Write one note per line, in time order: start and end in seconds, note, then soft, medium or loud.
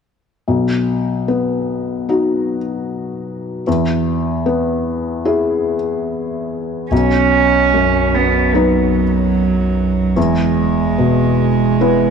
0.48 3.63 B1 soft
1.28 2.56 B3 soft
2.09 3.63 D#4 soft
2.09 3.63 F#4 soft
3.67 6.88 E2 soft
4.46 5.74 B3 soft
5.25 6.88 E4 soft
5.25 6.88 G#4 soft
6.91 10.18 B1 medium
6.91 10.13 B1 soft
6.91 8.16 C#4 medium
7.74 9.03 F#2 soft
8.15 8.56 B3 soft
8.54 10.19 F#3 medium
8.54 10.12 B3 soft
8.54 10.13 D#4 soft
8.54 10.13 B4 soft
10.16 12.10 E1 medium
10.16 12.10 E2 soft
10.16 12.10 G#3 medium
10.98 12.10 B2 soft
11.81 12.10 B3 soft
11.81 12.10 E4 soft
11.81 12.10 B4 soft